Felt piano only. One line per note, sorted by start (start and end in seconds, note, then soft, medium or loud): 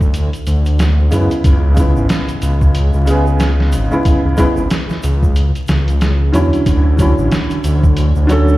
1.11 1.73 C#3 medium
1.11 1.74 G#3 medium
1.11 1.74 B3 medium
1.11 1.75 E4 medium
1.74 3.03 C#3 medium
1.74 3.04 G#3 medium
1.74 3.05 B3 medium
1.79 3.05 E4 medium
3.05 3.86 C#3 medium
3.05 3.87 G#3 medium
3.05 3.88 B3 medium
3.10 3.89 G#4 loud
3.91 4.34 C#3 medium
3.91 4.34 G#3 medium
3.91 4.35 B3 medium
3.91 4.35 E4 medium
4.37 4.56 C#3 medium
4.37 4.56 G#3 medium
4.37 4.57 B3 medium
4.37 4.57 E4 loud
6.32 6.95 D3 medium
6.32 6.95 F#3 medium
6.32 6.96 C#4 medium
6.32 6.96 E4 medium
6.97 8.25 D3 medium
6.97 8.26 F#3 medium
6.97 8.27 C#4 medium
7.02 8.27 E4 medium
8.27 8.58 D3 loud
8.27 8.58 F#3 medium
8.27 8.58 C#4 medium
8.32 8.58 A4 loud